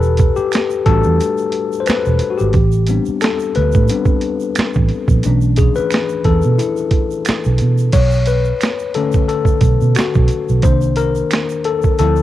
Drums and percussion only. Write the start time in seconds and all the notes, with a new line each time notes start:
0.03 shaker
0.17 kick, closed hi-hat, shaker
0.36 shaker
0.52 finger snap, snare, closed hi-hat, shaker
0.70 shaker
0.86 kick, closed hi-hat
1.03 shaker
1.20 closed hi-hat, shaker
1.38 shaker
1.52 closed hi-hat
1.72 shaker
1.86 finger snap, snare, closed hi-hat, shaker
2.05 shaker
2.19 closed hi-hat, shaker
2.39 shaker
2.53 kick, closed hi-hat, shaker
2.72 shaker
2.87 closed hi-hat, shaker
3.05 shaker
3.21 finger snap, snare, closed hi-hat, shaker
3.39 shaker
3.55 closed hi-hat
3.72 kick, shaker
3.88 closed hi-hat, shaker
4.05 kick, shaker
4.21 closed hi-hat
4.40 shaker
4.55 finger snap, snare, closed hi-hat, shaker
4.74 kick, shaker
4.89 closed hi-hat, shaker
5.08 kick, shaker
5.23 closed hi-hat, shaker
5.41 shaker
5.56 kick, closed hi-hat, shaker
5.75 shaker
5.91 finger snap, snare, closed hi-hat, shaker
6.09 shaker
6.24 kick, closed hi-hat
6.42 shaker
6.59 closed hi-hat, shaker
6.76 shaker
6.91 kick, closed hi-hat
7.11 shaker
7.25 finger snap, snare, closed hi-hat, shaker
7.44 shaker
7.58 closed hi-hat, shaker
7.78 shaker
7.93 kick, closed hi-hat, crash, shaker
8.11 shaker
8.26 closed hi-hat, shaker
8.45 shaker
8.61 finger snap, snare, closed hi-hat, shaker
8.79 shaker
8.94 closed hi-hat
9.12 kick, shaker
9.29 closed hi-hat, shaker
9.45 kick, shaker
9.61 kick, closed hi-hat, shaker
9.81 shaker
9.95 finger snap, snare, closed hi-hat, shaker
10.14 kick, shaker
10.28 closed hi-hat, shaker
10.49 shaker
10.62 kick, closed hi-hat, shaker
10.81 shaker
10.96 closed hi-hat, shaker
11.15 shaker
11.31 finger snap, snare, closed hi-hat, shaker
11.49 shaker
11.64 closed hi-hat
11.82 kick, shaker
11.98 closed hi-hat, shaker
12.16 shaker